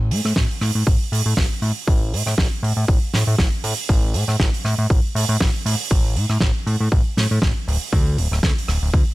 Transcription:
Already playing: analog synth bass A1
0.11 analog synth bass A2, open hi-hat
0.25 analog synth bass A2, cross-stick
0.36 analog synth bass A1, kick, snare
0.51 open hi-hat
0.61 analog synth bass A2, cross-stick, open hi-hat
0.75 analog synth bass A2
0.87 analog synth bass A1, kick
1.12 analog synth bass A2, open hi-hat
1.26 analog synth bass A2
1.37 analog synth bass A1, kick, snare
1.62 analog synth bass A2, open hi-hat
1.88 analog synth bass A1, kick
2.13 analog synth bass A2, open hi-hat
2.26 analog synth bass A2, cross-stick
2.38 analog synth bass A1, kick, snare
2.63 analog synth bass A2, open hi-hat
2.77 analog synth bass A2
2.88 analog synth bass A1, kick
3.14 analog synth bass A2, snare, open hi-hat
3.27 analog synth bass A2
3.39 analog synth bass A1, kick, snare
3.64 analog synth bass A2, open hi-hat
3.78 open hi-hat
3.89 analog synth bass A1, kick
4.14 analog synth bass A2, open hi-hat
4.28 analog synth bass A2, cross-stick
4.40 analog synth bass A1, kick, snare
4.54 open hi-hat
4.64 analog synth bass A2, cross-stick, open hi-hat
4.78 analog synth bass A2
4.90 analog synth bass A1, kick
5.15 analog synth bass A2, open hi-hat
5.29 analog synth bass A2
5.41 analog synth bass A1, kick, snare
5.65 analog synth bass A2, open hi-hat
5.91 analog synth bass A1, kick
6.16 analog synth bass A2, open hi-hat
6.30 analog synth bass A2, cross-stick
6.40 analog synth bass A1, kick, snare
6.66 analog synth bass A2, open hi-hat
6.80 analog synth bass A2
6.92 analog synth bass A1, kick
7.17 analog synth bass A2, snare, open hi-hat
7.31 analog synth bass A2
7.42 analog synth bass A1, kick, snare
7.67 analog synth bass D1, open hi-hat
7.81 open hi-hat
7.93 analog synth bass D2, kick
8.17 analog synth bass D1, open hi-hat
8.32 analog synth bass D1, cross-stick
8.43 analog synth bass D2, kick, snare
8.58 open hi-hat
8.68 analog synth bass D1, cross-stick, open hi-hat
8.82 analog synth bass D1
8.94 analog synth bass D2, kick

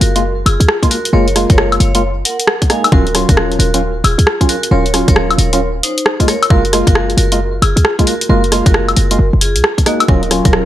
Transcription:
Already playing: synth stab G#3 A#3 F4
0.01 808-style bass F#1, vibraphone F#4 A#4, open hi-hat
0.16 synth stab G#3 A#3 F4, closed hi-hat
0.46 808-style bass F#1, vibraphone F4 G#4, open hi-hat, high woodblock
0.60 808-style bass C#2, closed hi-hat
0.69 cross-stick
0.83 synth stab G#3 A#3 F4, kick, closed hi-hat
0.91 vibraphone F#4 A#4, open hi-hat
1.05 closed hi-hat
1.13 808-style bass F#1, synth stab G#3 A#3 F4, vibraphone A#4 C#5
1.28 closed hi-hat
1.36 synth stab G#3 A#3 F4, cross-stick, open hi-hat
1.50 808-style bass F#1, vibraphone A#4 C#5, kick, closed hi-hat
1.58 cross-stick
1.72 closed hi-hat, high woodblock
1.80 808-style bass F#1, vibraphone C#5 F5, open hi-hat
1.95 synth stab G#3 A#3 F4, closed hi-hat
2.25 vibraphone A#4 F#5, open hi-hat
2.40 closed hi-hat
2.47 cross-stick
2.62 kick, closed hi-hat
2.70 synth stab G#3 A#3 D#4, vibraphone F5 G#5, cross-stick, open hi-hat
2.84 closed hi-hat, high woodblock
2.92 808-style bass D#1, synth stab F#3 C#4 F4, vibraphone F#4 A#4, kick
3.07 closed hi-hat
3.15 synth stab F#3 C#4 F4, cross-stick, open hi-hat
3.29 808-style bass D#1, vibraphone F#4 A#4, kick, closed hi-hat
3.37 cross-stick
3.52 closed hi-hat
3.59 808-style bass D#1, vibraphone F#4 A#4, open hi-hat
3.74 synth stab F#3 C#4 F4, closed hi-hat
4.04 808-style bass D#1, vibraphone F4 G#4, open hi-hat, high woodblock
4.18 808-style bass C#2, closed hi-hat
4.27 cross-stick
4.41 synth stab F#3 C#4 F4, kick, closed hi-hat
4.49 vibraphone F#4 A#4, open hi-hat
4.63 closed hi-hat
4.71 808-style bass D#1, synth stab F#3 C#4 F4, vibraphone A#4 C#5
4.86 closed hi-hat
4.94 synth stab F#3 C#4 F4, cross-stick, open hi-hat
5.08 808-style bass D#1, vibraphone A#4 C#5, kick, closed hi-hat
5.16 cross-stick
5.31 closed hi-hat, high woodblock
5.38 808-style bass D#1, vibraphone A#4 C#5, open hi-hat
5.53 synth stab F#3 C#4 F4, closed hi-hat
5.83 vibraphone D#4 C5, open hi-hat
5.98 closed hi-hat
6.06 cross-stick
6.20 synth stab G#3 A#3 F4, kick, closed hi-hat
6.28 vibraphone A#4 C#5, cross-stick, open hi-hat
6.43 closed hi-hat, high woodblock
6.50 808-style bass F#1, synth stab G#3 A#3 F4, vibraphone F#4 A#4, kick
6.65 closed hi-hat
6.73 synth stab G#3 A#3 F4, cross-stick, open hi-hat
6.87 808-style bass F#1, vibraphone F#4 A#4, kick, closed hi-hat
6.95 cross-stick
7.10 closed hi-hat
7.17 808-style bass F#1, vibraphone F#4 A#4, open hi-hat
7.32 synth stab G#3 A#3 F4, closed hi-hat
7.62 808-style bass F#1, vibraphone F4 G#4, open hi-hat, high woodblock
7.76 808-style bass C#2, closed hi-hat
7.85 cross-stick
7.99 synth stab G#3 A#3 F4, kick, closed hi-hat
8.07 vibraphone F#4 A#4, open hi-hat
8.21 closed hi-hat
8.29 808-style bass F#1, synth stab G#3 A#3 F4, vibraphone F#4 A#4
8.44 closed hi-hat
8.52 synth stab G#3 A#3 F4, cross-stick, open hi-hat
8.66 808-style bass F#1, vibraphone F#4 A#4, kick, closed hi-hat
8.74 cross-stick
8.89 closed hi-hat, high woodblock
8.97 808-style bass F#1, vibraphone F#4 A#4, open hi-hat
9.11 synth stab G#3 A#3 F4, closed hi-hat
9.19 808-style bass F#1
9.33 808-style bass F#1
9.41 vibraphone F4 G#4, open hi-hat
9.56 808-style bass C#2, closed hi-hat
9.64 cross-stick
9.78 kick, closed hi-hat
9.86 synth stab G#3 A#3 D#4, vibraphone A#3 F#4, cross-stick, open hi-hat
10.00 closed hi-hat, high woodblock
10.08 808-style bass D#1, analog synth pad F#3 C#4 F4 A#4, synth stab F#3 C#4 F4, vibraphone A#4, kick
10.23 closed hi-hat
10.31 synth stab F#3 C#4 F4, cross-stick, open hi-hat
10.45 808-style bass D#1, vibraphone A#4, kick, closed hi-hat
10.53 cross-stick

